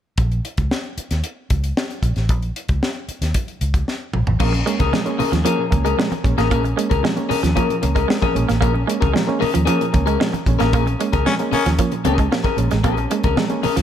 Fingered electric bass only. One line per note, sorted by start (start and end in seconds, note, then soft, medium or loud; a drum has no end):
0.18 0.39 A#1 medium
0.58 0.68 C#2 medium
0.98 muted fingered electric bass stroke soft
1.11 1.21 D#2 medium
1.51 1.72 C#2 medium
2.03 2.13 A#1 medium
2.17 2.30 A1 medium
2.30 2.51 A#1 loud
2.69 2.80 C#2 medium
3.09 muted fingered electric bass stroke soft
3.21 3.32 D#2 medium
3.61 3.82 C#2 medium
4.14 4.24 A#1 medium
4.27 4.38 A1 medium
4.40 4.61 A#1 loud
4.80 4.91 C#2 medium
5.19 muted fingered electric bass stroke soft
5.32 5.43 D#2 medium
5.73 5.94 C#2 medium
6.25 6.35 A#1 medium
6.38 6.52 A1 medium
6.52 6.73 A#1 loud
6.91 7.02 C#2 medium
7.31 muted fingered electric bass stroke soft
7.43 7.54 D#2 medium
7.83 8.04 C#2 medium
8.36 8.47 A#1 medium
8.50 8.63 A1 medium
8.63 8.84 A#1 loud
9.02 9.13 C#2 medium
9.42 muted fingered electric bass stroke soft
9.56 9.66 D#2 medium
9.95 10.16 C#2 medium
10.47 10.57 A#1 medium
10.61 10.73 A1 medium
10.73 10.94 A#1 loud
11.13 11.24 C#2 medium
11.54 muted fingered electric bass stroke soft
11.66 11.77 D#2 medium
12.06 12.27 C#2 medium
12.59 12.69 A#1 medium
12.73 12.85 A1 medium
12.85 13.05 A#1 loud
13.24 13.35 C#2 medium
13.64 muted fingered electric bass stroke soft
13.77 13.82 D#2 medium